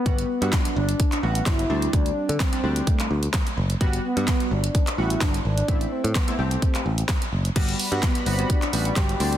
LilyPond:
<<
  \new Staff \with { instrumentName = "Analog synth pad" } { \time 4/4 \key g \major \tempo 4 = 128 << { r1 | r1 | r1 | r1 |
<g fis'' b''>2.~ <g fis'' b''>8 <g a'' c'''>8 | } \\ { r1 | r1 | r1 | r1 |
d''1 | } >> }
  \new Staff \with { instrumentName = "Soft synth lead" } { \time 4/4 \key g \major b4 d'8 d'4 r8 e'4 | d'4 c'4 a4. r8 | r8 b4 d'4 e'8 d'8 d'8~ | d'8 c'8 b8 c'4. r4 |
r4 b8 c'8 d'4 g'8 g'8 | }
  \new Staff \with { instrumentName = "Synth keys" } { \time 4/4 \key g \major <g b fis'>8 r16 <g b fis'>4 r8. <g b fis'>8. r16 <g c' d'>8~ | <g c' d'>4 r16 <g c' d'>16 <g c' d'>4 r4. | <g b fis'>8 r16 <g b fis'>4 r8. <g b fis'>8. r8. | <a c' e'>8. r8 <a c' e'>16 <a c' g'>4 r4. |
<g b fis'>8 r16 <g b fis'>8 r16 <g b fis'>16 <g b fis'>8 r16 <g b fis'>8. r16 <g c' d'>8 | }
  \new Staff \with { instrumentName = "Picked electric bass" } { \clef bass \time 4/4 \key g \major g,,8 r16 g,16 r8 g,,8 r8 a,,8 r8 d,8 | d,8 r16 d16 r8 d,8 r8 d,8 r8 fis,,8 | g,,8 r16 g,16 r8 g,,8 r8 a,,8 g,,8 aes,,8 | a,,8 r16 a,16 r8 c,8 r8 a,,8 r8 fis,,8 |
g,,8 r16 g,16 r8 g,,8 r8 a,,8 g,,8 d,8 | }
  \new DrumStaff \with { instrumentName = "Drums" } \drummode { \time 4/4 <hh bd>16 hh8 hh16 <hc hh bd sn>16 hh8 hh16 <hh bd>16 <hc hh>8 hh16 <hc hh bd sn>16 hh8 hh16 | <hh bd>16 hh8 hh16 <hc hh bd sn>16 hh8 hh16 <hh bd>16 <hc hh>8 hh16 <hc hh bd sn>16 hh8 hh16 | <hh bd>16 hh8 hh16 <hc hh bd sn>16 hh8 hh16 <hh bd>16 <hc hh>8 hh16 <hc hh bd sn>16 hh8 hh16 | <hh bd>16 hh8 hh16 <hc hh bd sn>16 hh8 hh16 <hh bd>16 <hc hh>8 hh16 <hc hh bd sn>16 hh8 hh16 |
<cymc hh bd>16 hh16 hho16 hh16 <hc hh bd sn>16 hh16 hho16 hh16 <hh bd>16 <hc hh>16 hho16 hh16 <hc hh bd sn>16 hh16 hho16 hh16 | }
>>